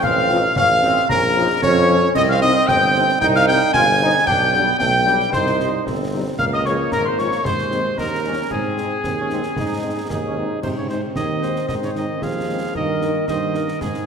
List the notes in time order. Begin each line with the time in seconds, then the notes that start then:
0.03 A1 C4 F5 F6, concert bass drum, crash
0.29 F3 C4 D#4 F4, snare
0.56 A1 C#4 F5 F6, concert bass drum, snare
0.82 F3 C4 F4, snare
0.96 snare
1.09 A#1 C#4 A#4 A#5, concert bass drum, snare
1.36 F3 C#4 D#4 F4
1.62 F2 C#4 C#5 C#6, concert bass drum, snare
1.88 F3 C#4 F4
2.14 C2 C4 D#5 D#6, concert bass drum, crash
2.29 F5 F6
2.41 G3 C4 D#4 D#5 D#6, snare
2.67 G1 G5 G6, concert bass drum, snare
2.94 G3 C4 D#4, snare
3.09 snare
3.21 C2 D#4 G5 G6, concert bass drum, snare
3.35 F5 F6, snare
3.48 G3 C4 D#4 G5 G6, snare
3.73 G1 F4 G#5 G#6, concert bass drum, snare
4.01 G3 C4 D#4
4.26 B1 D4 G5 G6, concert bass drum, crash
4.53 G3 B3 D4, snare
4.79 B1 A3 G5 G6, concert bass drum, snare
5.06 G3 D4, snare
5.20 snare
5.32 C2 D#4 C5 C6, concert bass drum, snare
5.47 snare
5.59 G3 C4 D#4, snare
5.86 G1 C4, concert bass drum, snare
6.13 G3 C4 D#4
6.38 C#2 A#3 F5 F6, concert bass drum, crash
6.53 D#5 D#6
6.65 F3 G#3 F4 C#5 C#6, snare
6.92 G#1 A#4 A#5, concert bass drum, snare
7.05 C5 C6
7.18 F3 G#3 F4 C#5 C#6, snare
7.32 snare
7.44 D#2 G#3 C5 C6, concert bass drum, snare
7.58 snare
7.71 G#3 C4 D#4, snare
7.98 D#2 D#4 A#4 A#5, concert bass drum, snare
8.25 G3 C#4 D#4
8.50 G#2 C4 G#4 G#5, concert bass drum, crash
8.78 G#3 C4 D#4, snare
9.03 D#2 C4, concert bass drum, snare
9.19 C#4
9.30 G#3 C4 D#4, snare
9.43 snare
9.56 G#2 D#4, concert bass drum, snare
9.83 G#3 C4 D#4
10.09 D#2 G#2 D#4 G#4, concert bass drum, snare
10.26 C#4
10.36 G#3 C4 D#4
10.62 G#2 C3 D#3 C4 C5, concert bass drum, crash
10.78 C#3 C#5
10.88 C3 G#3 C4 D#4 C5, snare
11.15 D#2 D#3 G#4 D#5, concert bass drum, snare
11.41 G#3 C4 D#4 C5, snare
11.56 snare
11.68 G#2 D#3 D#5, concert bass drum, snare
11.82 C#3 C#5, snare
11.95 D#3 G#3 C4 D#4 D#5, snare
12.22 D#2 F3 G#4 F5, concert bass drum, snare
12.49 G#3 C4 D#4
12.75 G2 D#3 A#3 A#4 D#5, concert bass drum
13.01 A#3 D#4, snare
13.28 G2 D#3 C5 D#5, concert bass drum, snare
13.54 A#3 D#4 A#4, snare
13.68 snare
13.81 G#2 C4 G#4, concert bass drum, snare
13.94 snare